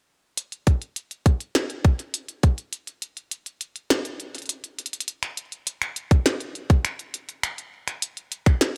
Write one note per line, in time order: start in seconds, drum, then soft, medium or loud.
0.37 closed hi-hat medium
0.52 closed hi-hat soft
0.67 kick loud
0.67 closed hi-hat medium
0.82 closed hi-hat soft
0.96 closed hi-hat medium
1.11 closed hi-hat soft
1.26 kick loud
1.26 closed hi-hat medium
1.40 closed hi-hat soft
1.55 snare loud
1.55 closed hi-hat medium
1.70 closed hi-hat soft
1.84 kick loud
1.84 closed hi-hat soft
1.99 closed hi-hat soft
2.14 closed hi-hat medium
2.29 closed hi-hat soft
2.43 kick loud
2.43 closed hi-hat medium
2.58 closed hi-hat soft
2.73 closed hi-hat medium
2.87 closed hi-hat soft
3.02 closed hi-hat medium
3.17 closed hi-hat soft
3.31 closed hi-hat medium
3.46 closed hi-hat soft
3.61 closed hi-hat medium
3.76 closed hi-hat soft
3.90 snare loud
3.90 closed hi-hat medium
4.05 closed hi-hat soft
4.20 closed hi-hat soft
4.35 closed hi-hat soft
4.38 closed hi-hat soft
4.42 closed hi-hat soft
4.46 closed hi-hat soft
4.49 closed hi-hat medium
4.64 closed hi-hat soft
4.79 closed hi-hat medium
4.86 closed hi-hat medium
4.93 closed hi-hat medium
5.00 closed hi-hat medium
5.08 closed hi-hat loud
5.23 finger snap medium
5.23 closed hi-hat soft
5.37 closed hi-hat medium
5.52 closed hi-hat soft
5.67 closed hi-hat medium
5.82 finger snap medium
5.82 closed hi-hat soft
5.96 closed hi-hat medium
6.11 kick loud
6.11 closed hi-hat soft
6.26 finger snap medium
6.26 snare loud
6.26 closed hi-hat medium
6.40 closed hi-hat soft
6.55 closed hi-hat soft
6.70 kick loud
6.70 closed hi-hat soft
6.85 finger snap medium
6.85 closed hi-hat medium
6.99 closed hi-hat soft
7.14 closed hi-hat medium
7.29 closed hi-hat soft
7.43 finger snap medium
7.43 closed hi-hat loud
7.58 closed hi-hat soft
7.88 finger snap soft
7.88 closed hi-hat medium
8.02 closed hi-hat medium
8.17 closed hi-hat soft
8.32 closed hi-hat medium
8.46 finger snap soft
8.46 kick loud
8.46 closed hi-hat soft
8.61 snare loud
8.61 closed hi-hat loud